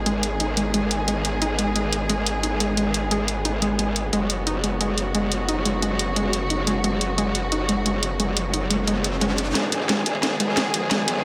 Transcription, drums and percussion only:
0.06 closed hi-hat
0.23 closed hi-hat
0.40 closed hi-hat
0.57 closed hi-hat
0.74 closed hi-hat
0.91 closed hi-hat
1.08 closed hi-hat
1.25 closed hi-hat
1.42 closed hi-hat
1.59 closed hi-hat
1.76 closed hi-hat
1.93 closed hi-hat
2.09 closed hi-hat
2.26 closed hi-hat
2.43 closed hi-hat
2.60 closed hi-hat
2.77 closed hi-hat
2.94 closed hi-hat
3.11 closed hi-hat
3.28 closed hi-hat
3.45 closed hi-hat
3.62 closed hi-hat
3.79 closed hi-hat
3.96 closed hi-hat
4.13 closed hi-hat
4.30 closed hi-hat
4.47 closed hi-hat
4.64 closed hi-hat
4.81 closed hi-hat
4.98 closed hi-hat
5.15 closed hi-hat
5.32 closed hi-hat
5.49 closed hi-hat
5.65 closed hi-hat
5.82 closed hi-hat
5.99 closed hi-hat
6.16 closed hi-hat
6.33 closed hi-hat
6.50 closed hi-hat
6.67 closed hi-hat
6.84 closed hi-hat
7.01 closed hi-hat
7.18 closed hi-hat
7.35 closed hi-hat
7.52 closed hi-hat
7.69 closed hi-hat
7.86 closed hi-hat
8.03 closed hi-hat
8.20 closed hi-hat
8.37 closed hi-hat
8.54 closed hi-hat
8.71 closed hi-hat
8.87 closed hi-hat
9.04 closed hi-hat
9.21 closed hi-hat
9.38 closed hi-hat
9.55 snare, closed hi-hat, ride
9.63 ride
9.72 closed hi-hat, ride
9.80 snare
9.89 snare, closed hi-hat, ride
9.98 snare
10.06 closed hi-hat, ride
10.15 ride
10.23 snare, closed hi-hat, ride
10.32 snare
10.40 closed hi-hat, ride
10.49 snare
10.57 snare, closed hi-hat, ride
10.66 snare
10.74 snare, closed hi-hat, ride
10.91 snare, closed hi-hat, ride
11.08 snare, closed hi-hat, ride
11.17 snare

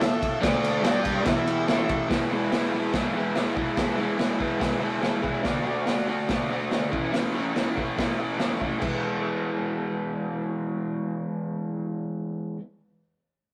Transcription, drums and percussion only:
0.01 snare, ride
0.22 kick, ride
0.43 kick, snare, ride
0.64 ride
0.84 snare, ride
1.05 kick, ride
1.25 kick, snare, ride
1.47 ride
1.68 snare, ride
1.89 kick, ride
2.11 kick, snare, open hi-hat
2.52 snare, open hi-hat
2.93 kick, snare, open hi-hat
3.35 snare, open hi-hat
3.57 kick
3.77 kick, snare, open hi-hat
4.19 snare, open hi-hat
4.40 kick
4.61 kick, snare, open hi-hat
5.03 snare, open hi-hat
5.24 kick
5.44 kick, snare, open hi-hat
5.87 snare, open hi-hat
6.29 kick, snare, open hi-hat
6.71 snare, open hi-hat
6.93 kick
7.14 snare, open hi-hat
7.56 snare, open hi-hat
7.78 kick
7.98 kick, snare, open hi-hat
8.39 snare, open hi-hat
8.61 kick
8.82 kick, crash

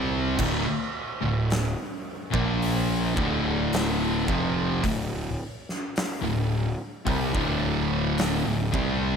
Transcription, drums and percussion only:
0.39 kick, crash
1.50 snare, open hi-hat
2.34 kick
2.62 open hi-hat
3.17 kick
3.73 snare, open hi-hat
4.28 kick
4.84 kick, open hi-hat
5.69 snare
5.96 snare, open hi-hat
7.07 kick, open hi-hat
7.35 kick
8.18 snare, open hi-hat
8.74 kick

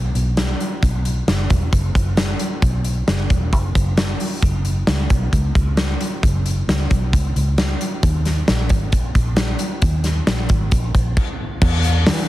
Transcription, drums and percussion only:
0.15 closed hi-hat
0.37 snare, closed hi-hat
0.60 closed hi-hat
0.83 kick, closed hi-hat
1.05 closed hi-hat
1.28 snare, closed hi-hat
1.50 kick, closed hi-hat
1.73 kick, closed hi-hat
1.95 kick, closed hi-hat
2.17 snare, closed hi-hat
2.39 closed hi-hat
2.62 kick, closed hi-hat
2.85 closed hi-hat
3.08 snare, closed hi-hat
3.30 kick, closed hi-hat
3.53 kick, closed hi-hat
3.75 kick, closed hi-hat
3.97 snare, closed hi-hat
4.20 open hi-hat
4.43 kick, closed hi-hat
4.65 closed hi-hat
4.87 snare, closed hi-hat
5.10 kick, closed hi-hat
5.33 kick, closed hi-hat
5.55 kick, closed hi-hat
5.77 snare, closed hi-hat
6.01 closed hi-hat
6.23 kick, closed hi-hat
6.46 closed hi-hat
6.69 snare, closed hi-hat
6.91 kick, closed hi-hat
7.13 kick, closed hi-hat
7.36 closed hi-hat
7.58 snare, closed hi-hat
7.81 closed hi-hat
8.03 kick, closed hi-hat
8.25 snare, closed hi-hat
8.48 snare, closed hi-hat
8.69 kick, closed hi-hat
8.92 kick, closed hi-hat
9.15 kick, closed hi-hat
9.36 snare, closed hi-hat
9.59 closed hi-hat
9.82 kick, closed hi-hat
10.04 snare, closed hi-hat
10.27 snare, closed hi-hat
10.49 kick, closed hi-hat
10.71 kick, closed hi-hat
10.95 kick, closed hi-hat
11.17 kick, crash
11.61 kick, crash
11.83 hi-hat pedal, open hi-hat
12.06 snare, hi-hat pedal, open hi-hat

